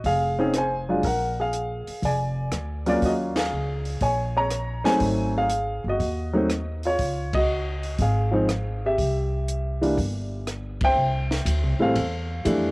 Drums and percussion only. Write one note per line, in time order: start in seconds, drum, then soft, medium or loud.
0.04 kick soft
0.04 open hi-hat soft
0.54 cross-stick medium
0.54 closed hi-hat medium
1.03 kick soft
1.03 open hi-hat soft
1.53 closed hi-hat soft
1.87 open hi-hat soft
2.03 kick soft
2.03 open hi-hat soft
2.52 cross-stick medium
2.52 closed hi-hat soft
2.86 open hi-hat soft
3.02 kick soft
3.02 open hi-hat soft
3.36 snare medium
3.36 ride medium
3.85 open hi-hat soft
4.01 kick soft
4.01 open hi-hat soft
4.50 cross-stick medium
4.50 closed hi-hat medium
4.85 snare soft
4.85 open hi-hat soft
5.00 kick soft
5.00 open hi-hat soft
5.50 closed hi-hat soft
6.00 kick soft
6.00 open hi-hat soft
6.50 cross-stick medium
6.50 closed hi-hat soft
6.83 open hi-hat soft
6.99 kick soft
6.99 open hi-hat soft
7.33 kick medium
7.33 ride medium
7.83 open hi-hat soft
7.99 kick soft
7.99 open hi-hat soft
8.49 cross-stick medium
8.49 closed hi-hat medium
8.98 kick soft
8.98 open hi-hat soft
9.48 closed hi-hat medium
9.83 open hi-hat soft
9.98 kick soft
9.98 open hi-hat soft
10.47 cross-stick medium
10.47 closed hi-hat soft
10.81 kick medium
10.81 ride medium
11.31 snare soft
11.46 kick soft
11.46 hi-hat pedal medium
11.46 ride medium
11.96 kick soft
11.96 ride medium
12.45 kick soft
12.45 hi-hat pedal medium
12.45 ride medium